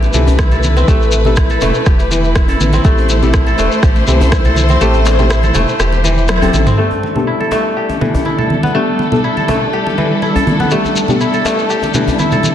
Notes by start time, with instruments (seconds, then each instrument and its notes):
Already playing: kora A3 B3 E4 G4 A4, string section A3 E4 B4, synth stab C4 E4 G4 A4
0.03 muted conga, djembe tone, shekere
0.14 sub bass C2, kora E3, synth stab C4 E4 G4 A4, high conga, low conga, shekere
0.27 djembe tone, djembe bass, shekere
0.39 kora E4, kick, cross-stick, muted conga, high conga, shekere
0.52 kora A4, low conga, shekere
0.63 high conga, shekere
0.77 kora C4, muted conga, high conga, shekere
0.88 sub bass A1, kora A3, synth stab C4 E4 G4 A4, kick, shekere
1.02 shekere
1.12 muted conga, shekere
1.25 synth stab C4 E4 G4 A4, low conga, shekere
1.36 kora E4, kick, cross-stick, shekere
1.50 kora A4, muted conga, shekere
1.61 sub bass E1, kora A3, djembe slap, djembe tone, low conga, shekere
1.74 shekere
1.86 sub bass E1, kora G4, kick, cross-stick, shekere
1.99 muted conga, shekere
2.11 kora E3, high conga, shekere
2.24 shekere
2.36 kora E4, kick, cross-stick, muted conga, shekere
2.48 kora A4, djembe bass, shekere
2.60 sub bass A1, high conga, djembe tone, shekere
2.73 kora C4, muted conga, high conga, shekere
2.85 sub bass A1, kora A3, synth stab C4 E4 G4 A4, string section C5, kick, shekere
2.98 djembe tone, shekere
3.09 muted conga, shekere
3.22 synth stab C4 E4 G4 A4, low conga, shekere
3.34 kora E4, kick, cross-stick, shekere
3.46 kora A4, muted conga, shekere
3.58 sub bass E1, kora A3, djembe slap, djembe tone, shekere
3.72 shekere
3.83 sub bass A1, kora G4, kick, cross-stick, shekere
3.96 muted conga, djembe tone, shekere
4.07 sub bass C2, kora E3, synth stab C4 E4 G4 A4, high conga, low conga, shekere
4.21 djembe tone, djembe bass, shekere
4.32 kora E4, kick, cross-stick, muted conga, high conga, shekere
4.45 kora A4, low conga, shekere
4.56 high conga, shekere
4.69 kora C4, muted conga, high conga, shekere
4.81 sub bass A1, kora A3, synth stab C4 E4 G4 A4, shekere
4.94 djembe tone, shekere
5.05 muted conga, djembe slap, shekere
5.19 synth stab C4 E4 G4 A4, low conga, shekere
5.30 kora E4, cross-stick, shekere
5.43 kora A4, muted conga, high conga, shekere
5.55 sub bass E1, kora A3, djembe slap, djembe tone, low conga, shekere
5.68 shekere
5.79 sub bass E1, kora G4, cross-stick, shekere
5.92 muted conga, shekere
6.04 kora E3, high conga, shekere
6.17 shekere
6.28 kora E4, cross-stick, high tom, muted conga, shekere
6.42 synth stab C4 E4 G4 A4, kora A4, high tom, djembe bass, shekere
6.53 sub bass A1, djembe tone, high conga, shekere
6.67 kora C4, mid tom, muted conga, high conga, shekere
6.78 string section G3 D4 A4, kora A3, synth stab B3 D4 G4 A4
6.91 djembe tone
7.03 muted conga
7.16 synth stab B3 D4 G4 A4, low conga
7.27 kora E4
7.40 kora A4, muted conga
7.51 kora A3, djembe slap, djembe tone
7.77 kora G4
7.89 muted conga, djembe tone
8.01 kora E3, synth stab B3 D4 G4 A4, high conga, low conga
8.14 djembe tone, djembe bass
8.25 kora E4, muted conga, high conga
8.39 kora A4, low conga
8.50 high conga
8.63 kora B3, muted conga, high conga
8.75 kora A3, synth stab B3 D4 G4 A4
8.99 muted conga
9.12 synth stab B3 D4 G4 A4, low conga
9.24 kora E4
9.37 kora A4, muted conga, high conga
9.48 kora A3, djembe slap, djembe tone, low conga
9.73 kora G4
9.87 muted conga
9.98 kora E3, high conga
10.22 kora E4, muted conga
10.36 kora A4, djembe bass
10.47 djembe tone, high conga
10.60 kora B3, muted conga, high conga
10.71 kora A3, synth stab B3 D4 G4 A4, shekere
10.85 djembe tone, shekere
10.95 muted conga, shekere
11.08 synth stab B3 D4 G4 A4, low conga, shekere
11.21 kora E4, shekere
11.33 kora A4, muted conga, shekere
11.45 kora A3, djembe slap, djembe tone, shekere
11.59 shekere
11.70 kora G4, shekere
11.82 muted conga, djembe tone, shekere
11.94 kora E3, synth stab B3 D4 G4 A4, high conga, low conga, shekere
12.07 djembe tone, djembe bass, shekere
12.19 kora E4, muted conga, high conga, shekere
12.32 kora A4, low conga, shekere
12.43 high conga, shekere